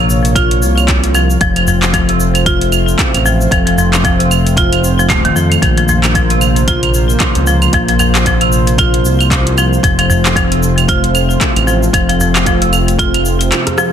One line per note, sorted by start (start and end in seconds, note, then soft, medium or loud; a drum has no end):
0.00 0.63 A#1 loud
0.00 1.37 A#3 medium
0.00 9.79 F4 medium
0.00 1.39 C#5 medium
0.10 shaker medium
0.25 closed hi-hat soft
0.25 shaker soft
0.35 0.87 F4 loud
0.35 kick loud
0.35 closed hi-hat medium
0.35 claves medium
0.35 shaker soft
0.51 closed hi-hat soft
0.62 1.37 C2 medium
0.62 shaker medium
0.78 claves medium
0.78 shaker soft
0.88 kick loud
0.88 clap medium
0.88 closed hi-hat medium
0.88 shaker soft
1.04 closed hi-hat soft
1.15 1.24 F3 medium
1.15 claves medium
1.15 shaker medium
1.30 shaker soft
1.40 2.95 F1 loud
1.40 1.56 F3 loud
1.40 5.58 A3 medium
1.40 5.58 C4 medium
1.40 13.93 C5 medium
1.40 kick loud
1.40 closed hi-hat medium
1.40 shaker soft
1.56 1.67 F3 medium
1.56 closed hi-hat soft
1.56 claves medium
1.67 1.93 F3 medium
1.67 udu medium
1.67 shaker medium
1.82 clap medium
1.82 closed hi-hat soft
1.82 shaker soft
1.93 2.08 F3 loud
1.93 kick loud
1.93 closed hi-hat medium
1.93 claves medium
1.93 shaker soft
2.09 2.20 C3 medium
2.09 closed hi-hat soft
2.20 shaker medium
2.35 closed hi-hat soft
2.35 claves medium
2.35 shaker soft
2.46 2.98 F4 loud
2.46 kick loud
2.46 closed hi-hat medium
2.46 shaker soft
2.61 closed hi-hat soft
2.72 claves medium
2.72 shaker medium
2.88 shaker soft
2.99 kick loud
2.99 clap medium
2.99 closed hi-hat medium
2.99 shaker soft
3.14 3.47 A1 loud
3.14 closed hi-hat soft
3.14 claves medium
3.26 3.34 F3 medium
3.26 shaker medium
3.41 shaker soft
3.51 4.82 F1 loud
3.51 3.66 F3 medium
3.51 kick loud
3.51 closed hi-hat medium
3.51 claves medium
3.51 shaker soft
3.67 3.77 F3 medium
3.67 closed hi-hat soft
3.77 4.03 F3 medium
3.77 udu loud
3.77 shaker medium
3.93 clap medium
3.93 closed hi-hat soft
3.93 claves medium
3.93 shaker medium
4.04 4.19 F3 loud
4.04 kick loud
4.04 closed hi-hat medium
4.04 shaker soft
4.20 4.30 C3 medium
4.20 closed hi-hat soft
4.31 claves medium
4.31 shaker medium
4.47 closed hi-hat soft
4.47 shaker soft
4.57 4.71 F4 loud
4.57 kick loud
4.57 closed hi-hat medium
4.57 shaker soft
4.73 closed hi-hat soft
4.73 claves medium
4.83 5.11 F1 medium
4.83 shaker medium
4.99 5.09 F3 medium
4.99 shaker soft
5.09 5.30 D#1 medium
5.09 5.24 A3 loud
5.09 kick loud
5.09 clap medium
5.09 closed hi-hat medium
5.09 claves medium
5.09 shaker soft
5.25 5.35 D#3 medium
5.25 closed hi-hat soft
5.36 5.57 F2 medium
5.36 5.50 F3 medium
5.36 shaker medium
5.52 closed hi-hat soft
5.52 claves medium
5.52 shaker soft
5.62 7.16 A#1 loud
5.62 5.77 F3 loud
5.62 9.79 A#3 medium
5.62 kick loud
5.62 closed hi-hat medium
5.62 claves medium
5.62 shaker soft
5.77 5.88 F3 medium
5.77 closed hi-hat soft
5.88 6.14 F3 medium
5.88 udu loud
5.88 shaker medium
6.04 clap medium
6.04 closed hi-hat soft
6.04 claves medium
6.04 shaker soft
6.15 6.30 F3 loud
6.15 kick loud
6.15 closed hi-hat medium
6.15 shaker soft
6.30 6.41 C3 medium
6.30 closed hi-hat soft
6.41 claves medium
6.41 shaker medium
6.56 closed hi-hat soft
6.56 shaker soft
6.68 7.19 F4 medium
6.68 kick loud
6.68 closed hi-hat medium
6.68 shaker soft
6.83 closed hi-hat soft
6.83 claves medium
6.94 shaker medium
7.10 shaker soft
7.20 kick loud
7.20 clap medium
7.20 closed hi-hat medium
7.20 claves medium
7.20 shaker soft
7.35 7.69 C#2 medium
7.35 closed hi-hat soft
7.47 7.55 F3 medium
7.47 shaker medium
7.62 claves medium
7.62 shaker soft
7.73 9.06 A#1 loud
7.73 7.88 F3 medium
7.73 kick loud
7.73 closed hi-hat medium
7.73 shaker soft
7.88 7.99 F3 medium
7.88 closed hi-hat soft
7.99 8.25 F3 medium
7.99 udu loud
7.99 claves medium
7.99 shaker medium
8.15 clap medium
8.15 closed hi-hat soft
8.15 shaker soft
8.26 8.40 F3 loud
8.26 kick loud
8.26 closed hi-hat medium
8.26 shaker soft
8.41 8.52 C3 medium
8.41 closed hi-hat soft
8.41 claves medium
8.52 shaker medium
8.67 closed hi-hat soft
8.67 shaker soft
8.78 9.30 F4 loud
8.78 kick loud
8.78 closed hi-hat medium
8.78 claves medium
8.78 shaker soft
8.94 closed hi-hat soft
9.04 9.79 C2 medium
9.04 shaker medium
9.21 claves medium
9.21 shaker soft
9.31 kick loud
9.31 clap medium
9.31 closed hi-hat medium
9.31 shaker soft
9.47 closed hi-hat soft
9.58 9.66 F3 medium
9.58 claves medium
9.58 shaker medium
9.73 shaker soft
9.83 11.37 F1 loud
9.83 9.98 F3 medium
9.83 13.93 A3 medium
9.83 13.93 C4 medium
9.83 13.93 F4 medium
9.83 kick loud
9.83 closed hi-hat medium
9.83 shaker soft
9.99 10.08 F3 medium
9.99 closed hi-hat soft
9.99 claves medium
10.10 10.35 F3 medium
10.10 udu medium
10.10 shaker medium
10.25 clap medium
10.25 closed hi-hat soft
10.25 shaker soft
10.36 10.50 F3 loud
10.36 kick loud
10.36 closed hi-hat medium
10.36 claves medium
10.36 shaker soft
10.52 10.62 C3 medium
10.52 closed hi-hat soft
10.63 shaker medium
10.78 closed hi-hat soft
10.78 claves medium
10.78 shaker soft
10.88 11.40 F4 loud
10.88 kick loud
10.88 closed hi-hat medium
10.88 shaker soft
11.04 closed hi-hat soft
11.15 claves medium
11.15 shaker medium
11.30 shaker soft
11.41 kick loud
11.41 clap medium
11.41 closed hi-hat medium
11.41 shaker soft
11.56 11.89 A1 loud
11.56 closed hi-hat soft
11.56 claves medium
11.67 11.76 F3 medium
11.67 shaker medium
11.83 shaker soft
11.93 13.25 F1 loud
11.93 12.08 F3 loud
11.93 kick loud
11.93 closed hi-hat medium
11.93 claves medium
11.93 shaker soft
12.09 12.19 F3 medium
12.09 closed hi-hat soft
12.19 12.45 F3 medium
12.19 udu loud
12.19 shaker medium
12.36 clap medium
12.36 closed hi-hat soft
12.36 claves medium
12.36 shaker soft
12.46 12.61 F3 loud
12.46 kick loud
12.46 closed hi-hat medium
12.46 shaker soft
12.62 12.72 C3 medium
12.62 closed hi-hat soft
12.73 claves medium
12.73 shaker medium
12.88 closed hi-hat soft
12.88 shaker soft
12.99 13.51 F4 loud
12.99 kick loud
12.99 closed hi-hat medium
12.99 shaker soft
13.14 closed hi-hat soft
13.14 claves medium
13.25 13.52 F1 medium
13.25 shaker medium
13.41 closed hi-hat soft
13.41 shaker soft
13.52 clap medium
13.52 closed hi-hat medium
13.52 claves medium
13.52 shaker soft
13.67 cross-stick medium
13.67 closed hi-hat soft
13.67 udu medium
13.78 13.87 F3 medium
13.78 cross-stick medium
13.78 shaker medium